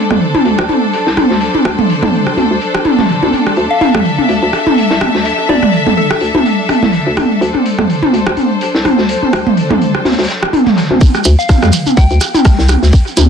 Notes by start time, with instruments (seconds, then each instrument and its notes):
Already playing: string section D4 A4 C5
0.11 fm bass F2, cross-stick, mid tom
0.22 closed hi-hat
0.35 high tom
0.45 fm bass D2, closed hi-hat
0.59 fm bass D2, cross-stick
0.69 closed hi-hat, high tom
0.93 closed hi-hat
1.07 fm bass C2, snare
1.17 cross-stick, closed hi-hat, high tom
1.30 fm bass D2, snare
1.40 closed hi-hat
1.55 high tom
1.65 fm bass D2, cross-stick, closed hi-hat
1.79 mid tom
1.90 closed hi-hat
2.03 fm bass F2, mid tom, high tom
2.13 closed hi-hat
2.27 cross-stick
2.37 fm bass D2, closed hi-hat, high tom
2.51 fm bass D2
2.61 closed hi-hat
2.75 cross-stick
2.85 closed hi-hat, high tom
2.98 fm bass A1, snare, mid tom
3.09 fm bass D1, closed hi-hat
3.23 fm bass D2, high tom
3.33 closed hi-hat, high tom
3.47 cross-stick
3.56 fm bass D2, closed hi-hat
3.71 string section E5, synth bell F5
3.81 synth bell F5, closed hi-hat, high tom
3.95 fm bass F2, cross-stick, mid tom
4.05 closed hi-hat
4.19 high tom
4.29 fm bass D2, closed hi-hat
4.43 fm bass D2
4.53 cross-stick, closed hi-hat
4.67 high tom
4.78 closed hi-hat
4.90 fm bass C2, snare
5.01 cross-stick, closed hi-hat, high tom
5.15 fm bass D2, snare
5.25 closed hi-hat
5.49 fm bass D2, synth bell D5, closed hi-hat, high tom
5.63 synth bell D5, cross-stick, mid tom
5.73 closed hi-hat
5.87 fm bass F2, mid tom, high tom
5.97 synth bell A4, closed hi-hat
6.11 synth bell A4, cross-stick
6.20 fm bass D2, closed hi-hat
6.35 fm bass D2, high tom
6.46 closed hi-hat
6.69 cross-stick, closed hi-hat, high tom
6.83 fm bass C2, snare, mid tom
6.93 closed hi-hat
7.07 fm bass D2
7.17 cross-stick, closed hi-hat, high tom
7.41 fm bass D2, closed hi-hat
7.55 string section C5, high tom
7.66 closed hi-hat
7.79 fm bass F2, cross-stick, mid tom
7.90 closed hi-hat
8.03 high tom
8.13 fm bass D2, closed hi-hat
8.27 fm bass D2, cross-stick
8.37 closed hi-hat, high tom
8.61 closed hi-hat
8.75 fm bass C2, snare
8.85 cross-stick, closed hi-hat, high tom
8.98 fm bass D2, snare
9.09 closed hi-hat
9.23 high tom
9.33 fm bass D2, cross-stick, closed hi-hat
9.47 mid tom
9.57 closed hi-hat
9.71 fm bass F2, mid tom, high tom
9.81 closed hi-hat
9.95 cross-stick
10.05 fm bass D2, snare, closed hi-hat, high tom
10.12 snare, closed hi-hat
10.18 fm bass D2, snare, closed hi-hat
10.23 snare, closed hi-hat
10.28 snare, closed hi-hat
10.43 cross-stick
10.53 closed hi-hat, high tom
10.66 snare, mid tom
10.77 snare, closed hi-hat
10.91 fm bass D2, high tom
11.01 kick, closed hi-hat, high tom, shekere
11.14 cross-stick, shekere
11.25 fm bass D2, closed hi-hat, shekere
11.39 synth bell F5, shekere
11.49 synth bell F5, kick, cross-stick, snare, closed hi-hat, high tom, shekere
11.62 fm bass F2, cross-stick, mid tom, shekere
11.73 closed hi-hat, shekere
11.87 high tom, shekere
11.97 fm bass D2, synth bell G5, kick, closed hi-hat, shekere
12.10 fm bass D2, shekere
12.21 cross-stick, closed hi-hat, shekere
12.35 high tom, shekere
12.44 kick, cross-stick, snare, closed hi-hat, shekere
12.59 fm bass C2, snare, shekere
12.69 cross-stick, closed hi-hat, high tom, shekere
12.83 fm bass D2, snare, shekere
12.93 kick, closed hi-hat, shekere
13.07 shekere
13.17 fm bass D2, closed hi-hat, high tom, shekere